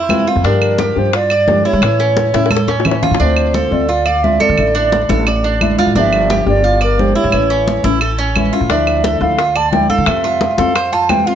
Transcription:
Already playing: F2 E4
0.09 C3 E3 A3 C4 F4, high bongo, low bongo, high conga, claves
0.27 A3 C4 F4, high bongo
0.36 F2
0.44 G2 D3 F3 A#3 D4 G4 A#4, high bongo, high conga
0.61 high bongo, high conga, claves
0.78 G4, high bongo, high conga
0.95 G2 F3 A#3 D4 G4 C5, high bongo, high conga
1.13 F4 D5, muted nylon-string guitar stroke, high bongo, high conga
1.30 D5, high conga, claves
1.48 D3 F3 A#3 D4 G4, high bongo, low bongo, high conga
1.65 A#3 D4 E4 G4 C#5, high bongo
1.73 G3
1.81 A2 E3 A3 C#4 E4, high bongo, high conga, claves
1.99 C#4, high bongo, high conga
2.17 high bongo, high conga
2.33 A2 A3 C#4 E4, high bongo, high conga
2.46 high bongo
2.50 A4, muted nylon-string guitar stroke, high conga, claves
2.57 high bongo
2.68 C#4, high bongo, high conga
2.80 low bongo
2.85 E3 A3 C#4 E4, low conga, claves
2.91 low bongo
3.02 A3 C#4 E4 F4, low bongo, low conga
3.11 A2, low bongo
3.19 D2 D3 A3 C4 D4 F4 C5, high conga
3.37 high conga, claves
3.54 A4, high conga
3.71 D2 A3 C4 F4 D5, high conga
3.88 F4, muted nylon-string guitar stroke, high conga
4.06 D5 F5, high conga, claves
4.23 D3 A3 C4 F4 E5, high conga
4.40 A3 C4 F4 A4 D5, high conga
4.49 D3
4.57 A1 D3 A3 D4 E4, high conga, claves
4.75 D4, high conga
4.92 high conga
5.09 A1 A3 D4 E4 A4, high conga
5.27 D5, muted nylon-string guitar stroke, high conga, claves
5.44 D4, high conga
5.60 D3 A3 D4 E4, high conga, claves
5.77 A3 D4 E4 F4, high conga
5.86 A2
5.95 G1 D3 F3 A#3 D4 G4 E5, high conga
6.13 high conga, claves
6.30 G4, high conga
6.46 G1 F3 A#3 D4 G4 D5, high conga
6.64 F4, muted nylon-string guitar stroke, high conga
6.81 A#4 D5, high conga, claves
6.98 D3 F3 A#3 D4 G4 C5, high conga
7.15 A#3 D4 E4 C#5
7.24 G2
7.32 A1 E3 A3 C#4 E4, high conga, claves
7.50 C#4, high conga
7.68 high conga
7.84 A1 A3 C#4 E4, high conga
8.01 A4, muted nylon-string guitar stroke, high conga, claves
8.18 C#4, high conga
8.35 E3 A3 C#4 E4, high conga, claves
8.53 A3 C#4 E4 F4
8.61 A2
8.69 D2 D3 F3 A3 D4 E4 E5, high bongo, high conga
8.87 high bongo, high conga, claves
9.04 A4, high bongo, high conga
9.21 D2 F3 A3 D4 E4 F5, high bongo, high conga
9.38 F4, muted nylon-string guitar stroke, high bongo, high conga
9.56 D5 A5, high conga, claves
9.72 D3 F3 A3 D4 E4 G5, high bongo, low bongo, high conga
9.89 A3 D4 E4 A4 F5, high bongo, high conga
9.98 D3
10.06 F2 C3 A3 C4 F4 E5, high bongo, high conga, claves
10.24 F4, high bongo, high conga
10.41 high bongo, high conga
10.57 F2 E3 A3 C4 F4 A4 F5, high bongo, high conga
10.75 C5, muted nylon-string guitar stroke, high bongo, high conga, claves
10.92 F4 A5, high conga
11.09 C3 E3 A3 C4 F4 G5, high bongo, low bongo, high conga, claves
11.27 A3 C4 F4 F5, high bongo

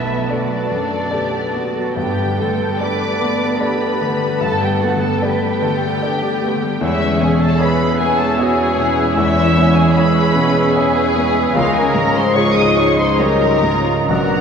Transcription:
Already playing: B1 F#2 B2 A3 B3 D4 E4 A4 B4 E5 A5
0.05 F#3
0.27 D3 D4 F#4 A4 D5
0.48 F#3
0.55 B4
0.67 F#2 A3 A4
0.82 A4
0.89 F#3
1.10 D3 G4 A4 B4 D5
1.31 F#3
1.38 D4
1.53 A3 B3 F#4
1.67 F#3
1.76 F#3
1.95 G2 D3 A3 B3 G4 B4 G5 A5
2.18 G3
2.24 D3
2.38 D3 A3 A4
2.52 A3
2.61 G3
2.79 D3 D4 A4 B4 D5 D6
3.03 G3
3.08 B4
3.21 A3 B3
3.35 A4
3.42 G3
3.60 D3 G4 A4 B4 D5 B5
3.82 G3
3.88 D4
4.01 D3 A3
4.16 D3
4.22 G3
4.41 G2 D3 A4 A5
4.62 G3 G4 G5
4.69 A3
4.81 A3 B3 F#4 F#5
4.95 D3
5.00 G3 A4 A5
5.20 D3 D4 G4 A4 B4 D5 G5
5.45 G3
5.49 B4
5.61 D3 A3 A4
5.76 A4
5.84 G3
6.02 D3 G4 A4 B4 D5
6.22 G3
6.29 D4
6.43 A3 B3
6.55 D3
6.63 G3
6.80 E2 E3 G#3 C#4 E4 G#4 C#5 E5
7.07 G#3
7.20 B2 G#4 G#5
7.34 E4
7.41 A4 A5
7.60 G#3 B3 G#4 B4 C#5 B5
7.99 B3 G#4 G#5
8.12 E5
8.19 A4 A5
8.37 B3 F#4 G#4 C#5 G#5
8.63 C#5
8.78 B2 B3 E4
8.91 G#3
9.16 E2 E3 G#3 C#4 E4 E5
9.44 E4
9.57 B3
9.70 G#3
9.76 G#4 G#5
9.94 G#3 G#4 B4 C#5 B5
10.36 B2 B3
10.49 E5
10.75 B3 G#4 B4 C#5 G#5
11.02 C#5
11.16 G#3 B3 B4
11.29 G#3
11.55 C#2 C#3 F3 G#3 C#4 D#4 F4 A#4 C#5 D#5 F5
11.74 G#4 G#5
11.82 C#4
11.93 G#2 A#4 A#5
12.09 G#3
12.16 C5 C6
12.34 D#4 F4 G#4 C#5 D#5 C#6
12.55 D#5 D#6
12.64 C#5
12.77 D#4 C#5 C#6
12.98 C5 C6
13.19 G3 G#3 D#4 G4 A#4 C#5 A#5
13.50 D#4
13.63 G#2 F3 F4
13.79 C#4
14.08 B1 B2 F#3 B3 D4 F#4 A#4 D5 F#5 A#5

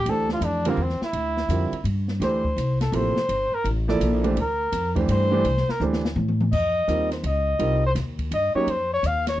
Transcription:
Already playing: G4
0.06 D2 E3 A3 D4 G4 C5, ride
0.10 A4
0.29 snare
0.33 F4
0.41 F2, hi-hat pedal, ride
0.45 D4
0.65 D3 G3 C4 F4 A#4, ride
0.70 A#3
0.77 E2
0.83 C4
0.89 snare
1.01 E4, muted upright bass stroke, snare
1.13 D2, ride
1.37 snare
1.49 F2 D3 G3 C4 F4 A#4, hi-hat pedal, ride
1.72 muted upright bass stroke, ride
1.84 G2, ride
2.08 snare
2.20 D2 E3 A3 D4 G4 C5, snare, ride
2.45 kick
2.56 C2, hi-hat pedal, ride
2.81 A4, snare, ride
2.92 A1 C3 F3 A#3 E4 A4 C5, ride
3.16 muted upright bass stroke, snare
3.29 G1, ride
3.52 A#4, muted upright bass stroke
3.64 A1, ride
3.88 F3 A#3 E4 A4 D5, snare
4.00 A#1, hi-hat pedal, ride
4.24 E3 A3 D4 G4 C5, ride
4.37 D2, ride
4.41 A#4
4.72 F2, hi-hat pedal, ride
4.95 E3 A3 D4 G4 C5, kick, ride
5.00 G4
5.08 G2 C5, ride
5.31 E3 A3 D4 G4 C5
5.44 C2, ride
5.57 snare
5.68 A#4, muted upright bass stroke, snare
5.80 D2 E3 A3 D4 G4 C5, hi-hat pedal
5.93 snare
6.05 snare
6.16 A2, high tom
6.28 high tom
6.41 high tom
6.52 F2 D#5, kick, crash
6.88 D#2 G3 C4 D#4 F4 A#4, hi-hat pedal, ride
7.11 C5, snare, ride
7.23 C#2 D#5, ride
7.59 C2 G3 C4 D#4 F4 A#4, ride
7.86 C5
7.95 D#2, snare, hi-hat pedal, ride
8.19 kick, ride
8.31 G2 D#5, ride
8.55 F#3 A#3 C#4 D#4 G4 C#5, muted upright bass stroke
8.67 F2 C5, ride
8.94 C#5
9.03 D#2 F5, hi-hat pedal, ride
9.27 C#5, snare, ride

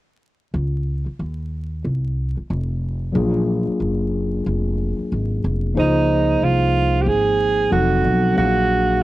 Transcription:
0.54 C#2
1.06 muted upright bass stroke
1.19 D#2
1.84 C2
2.37 muted upright bass stroke
2.50 F1
3.12 A#1 F#3 A#3 D4 F4 G#4
3.67 muted upright bass stroke
3.80 F#1
4.46 F1
4.99 muted upright bass stroke
5.12 G#1
5.44 F1
5.74 C#2 F3 A#3 D#4 G#4 C5
5.79 D#4
6.42 C2 F4
7.02 G4
7.06 G#1 G#4
7.70 F1 F3 F#3 C4 D#4 F#4 A4
8.04 B1
8.35 A#1 F#3 A#3 C4 F#4 G#4 F5
8.43 D4

